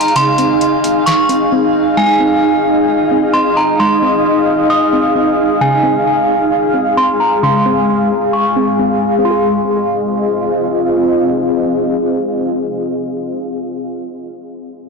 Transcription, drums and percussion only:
0.01 closed hi-hat
0.08 closed hi-hat
0.16 closed hi-hat
0.38 closed hi-hat
0.61 closed hi-hat
0.84 closed hi-hat
1.07 snare, closed hi-hat
1.29 closed hi-hat

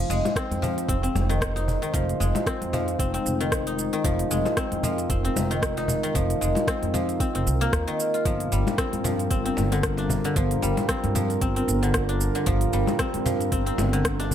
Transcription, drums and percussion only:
0.10 shaker
0.25 cajon slap, low conga, shaker
0.36 kick, cross-stick, open hi-hat, shaker
0.52 open hi-hat, low conga, shaker
0.63 cajon bass, shaker
0.78 open hi-hat, shaker
0.89 kick, open hi-hat, shaker
1.04 open hi-hat, shaker
1.15 cajon slap, low conga, shaker
1.30 cross-stick, open hi-hat, shaker
1.41 kick, cross-stick, open hi-hat, shaker
1.56 cajon slap, open hi-hat, shaker
1.68 cajon bass, shaker
1.83 open hi-hat, shaker
1.94 kick, open hi-hat, shaker
2.09 open hi-hat, shaker
2.21 shaker
2.35 cajon slap, open hi-hat, low conga, shaker
2.46 kick, cross-stick, open hi-hat, shaker
2.62 open hi-hat, low conga, shaker
2.73 cajon bass, cajon slap, shaker
2.88 open hi-hat, shaker
2.99 kick, open hi-hat, shaker
3.14 open hi-hat, shaker
3.26 shaker
3.41 open hi-hat, shaker
3.52 kick, cross-stick, open hi-hat, shaker
3.67 open hi-hat, shaker
3.79 shaker
3.93 open hi-hat, shaker
4.04 kick, open hi-hat, shaker
4.19 open hi-hat, shaker
4.31 shaker
4.45 cajon slap, low conga, shaker
4.57 kick, cross-stick, open hi-hat, shaker
4.72 open hi-hat, low conga, shaker
4.83 cajon bass, shaker
4.98 open hi-hat, shaker
5.10 kick, open hi-hat, shaker
5.25 open hi-hat, shaker
5.36 cajon slap, low conga, shaker
5.51 cross-stick, open hi-hat, shaker
5.62 kick, cross-stick, open hi-hat, shaker
5.77 cajon slap, open hi-hat, shaker
5.88 cajon bass, shaker
6.04 open hi-hat, shaker
6.15 kick, open hi-hat, shaker
6.30 open hi-hat, shaker
6.42 shaker
6.55 cajon slap, open hi-hat, low conga, shaker
6.67 kick, cross-stick, open hi-hat, shaker
6.83 open hi-hat, low conga, shaker
6.94 cajon bass, cajon slap, shaker
7.09 open hi-hat, shaker
7.20 kick, open hi-hat, shaker
7.35 open hi-hat, shaker
7.47 shaker
7.61 open hi-hat, shaker
7.73 kick, cross-stick, open hi-hat, shaker
7.88 open hi-hat, shaker
8.00 shaker
8.14 open hi-hat, shaker
8.25 kick, open hi-hat, shaker
8.40 open hi-hat, shaker
8.52 shaker
8.67 cajon slap, low conga, shaker
8.78 kick, cross-stick, open hi-hat, shaker
8.93 open hi-hat, low conga, shaker
9.05 cajon bass, shaker
9.19 open hi-hat, shaker
9.31 kick, open hi-hat, shaker
9.46 open hi-hat, shaker
9.57 cajon slap, low conga, shaker
9.72 cross-stick, open hi-hat, shaker
9.83 kick, cross-stick, open hi-hat, shaker
9.97 cajon slap, open hi-hat, shaker
10.10 cajon bass, shaker
10.24 open hi-hat, shaker
10.36 kick, open hi-hat, shaker
10.51 open hi-hat, shaker
10.63 shaker
10.77 cajon slap, open hi-hat, low conga, shaker
10.89 kick, cross-stick, open hi-hat, shaker
11.04 open hi-hat, low conga, shaker
11.15 cajon bass, cajon slap, shaker
11.30 open hi-hat, shaker
11.41 kick, open hi-hat, shaker
11.56 open hi-hat, shaker
11.68 shaker
11.83 open hi-hat, shaker
11.94 kick, cross-stick, open hi-hat, shaker
12.09 open hi-hat, shaker
12.21 shaker
12.35 open hi-hat, shaker
12.46 kick, open hi-hat, shaker
12.61 open hi-hat, shaker
12.73 shaker
12.87 cajon slap, low conga, shaker
12.99 kick, cross-stick, open hi-hat, shaker
13.14 open hi-hat, low conga, shaker
13.26 cajon bass, shaker
13.41 open hi-hat, shaker
13.52 kick, open hi-hat, shaker
13.67 open hi-hat, shaker
13.78 cajon slap, low conga, shaker
13.93 cross-stick, open hi-hat, shaker
14.04 kick, cross-stick, open hi-hat, shaker
14.20 cajon slap, open hi-hat, shaker
14.31 cajon bass, shaker

